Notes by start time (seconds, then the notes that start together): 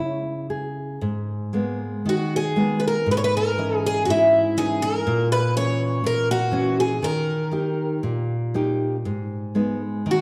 Already playing: C#3 E4
0.50 G#4
1.01 G#2
1.53 G#3 A#3 B3
2.06 D#3 F#4
2.36 G#4
2.56 G#3 A#3 B3
2.80 B4
2.88 A#4
3.06 G#2
3.11 B4
3.17 C#5
3.24 B4
3.37 A#4
3.58 E3 C#4 D#5
3.86 G#4
4.05 G#2 F#4
4.10 E4
4.57 E3 C#4 D#4 G#4
4.82 A#4
5.07 A#2
5.32 B4
5.56 E3 A#3 C#4 C#5
6.04 A#2 A#4
6.31 F#4
6.51 E3 A#3 C#4
6.80 G#4
7.02 D#3 A#4
7.51 A#3 D#4 G4
8.03 A#2
8.54 A#3 D#4 G4
9.05 G#2
9.55 G#3 B3 D#4
10.06 D#3
10.11 F#4